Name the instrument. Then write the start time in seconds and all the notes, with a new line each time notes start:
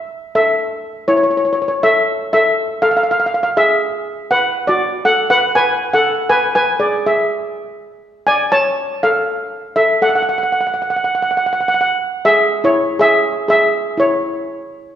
steel pan
0.35 A4 E5
1.08 E4 C#5
1.17 C#5
1.23 C#5
1.31 C#5
1.37 C#5
1.45 C#5
1.53 C#5
1.62 C#5
1.68 C#5
1.83 A4 E5
2.33 A4 E5
2.82 A4 F5
2.91 F5
2.97 F5
3.03 F5
3.11 F5
3.20 F5
3.26 F5
3.34 F5
3.43 F5
3.57 G#4 E5
4.31 B4 F#5
4.67 F#4 D5
5.05 A4 F#5
5.30 B4 F#5
5.55 B4 G#5
5.94 A4 F#5
6.29 B4 G#5
6.55 B4 G#5
6.80 G#4 D5
7.06 G#4 E5
8.27 D5 G#5
8.52 C#5 A5
9.03 A4 F5
9.76 A4 E5
10.02 A4 F#5
10.09 F#5
10.15 F#5
10.22 F#5
10.29 F#5
10.38 F#5
10.43 F#5
10.52 F#5
10.61 F#5
10.67 F#5
10.74 F#5
10.82 F#5
10.90 F#5
10.96 F#5
11.04 F#5
11.15 F#5
11.22 F#5
11.31 F#5
11.37 F#5
11.46 F#5
11.53 F#5
11.61 F#5
11.68 F#5
11.74 F#5
11.81 F#5
12.25 G#4 E5
12.64 E4 C#5
12.99 G#4 E5
13.48 G#4 E5
13.97 E4 C#5